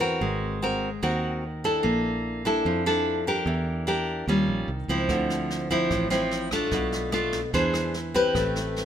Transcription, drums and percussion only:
5.09 kick medium
5.09 cross-stick medium
5.09 snare soft
5.30 snare soft
5.50 snare soft
5.70 kick soft
5.70 snare soft
5.90 kick medium
5.90 cross-stick medium
5.90 snare soft
6.11 snare soft
6.31 snare soft
6.51 kick soft
6.51 cross-stick medium
6.51 snare soft
6.71 kick medium
6.71 snare soft
6.92 snare soft
7.12 cross-stick medium
7.12 snare soft
7.33 kick soft
7.33 snare soft
7.53 kick medium
7.53 snare soft
7.74 cross-stick medium
7.74 snare soft
7.94 snare soft
8.14 kick soft
8.14 snare soft
8.35 kick medium
8.35 cross-stick medium
8.35 snare soft
8.56 snare soft
8.76 snare soft

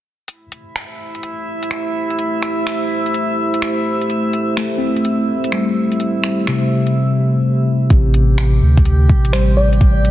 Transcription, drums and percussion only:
0.28 closed hi-hat medium
0.52 closed hi-hat medium
0.76 finger snap medium
0.76 closed hi-hat medium
1.15 closed hi-hat soft
1.23 closed hi-hat medium
1.63 closed hi-hat soft
1.71 finger snap medium
1.71 closed hi-hat medium
2.10 closed hi-hat soft
2.19 closed hi-hat medium
2.43 finger snap medium
2.43 closed hi-hat medium
2.67 finger snap loud
2.67 closed hi-hat medium
3.06 closed hi-hat soft
3.14 closed hi-hat medium
3.54 closed hi-hat soft
3.62 finger snap loud
3.62 closed hi-hat medium
4.01 closed hi-hat soft
4.10 closed hi-hat medium
4.33 closed hi-hat medium
4.57 finger snap loud
4.57 closed hi-hat medium
4.97 closed hi-hat soft
5.05 closed hi-hat medium
5.44 closed hi-hat medium
5.52 finger snap loud
5.52 closed hi-hat medium
5.92 closed hi-hat soft
6.00 closed hi-hat medium
6.24 finger snap medium
6.24 closed hi-hat soft
6.47 finger snap loud
6.47 closed hi-hat soft
6.87 closed hi-hat soft
7.90 kick loud
7.90 closed hi-hat medium
8.14 closed hi-hat medium
8.38 finger snap loud
8.38 closed hi-hat medium
8.77 kick loud
8.77 closed hi-hat soft
8.85 closed hi-hat medium
9.09 kick loud
9.25 closed hi-hat medium
9.33 finger snap loud
9.33 closed hi-hat medium
9.73 closed hi-hat soft
9.81 kick loud
9.81 closed hi-hat medium
10.05 closed hi-hat medium

